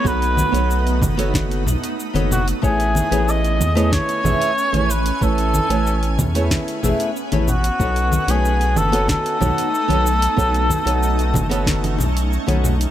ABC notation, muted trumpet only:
X:1
M:4/4
L:1/16
Q:1/4=93
K:Bmix
V:1 name="Muted trumpet"
B6 z8 F2 | G4 d4 c6 B2 | A6 z8 F2- | F3 G3 A2 A8- |
A12 z4 |]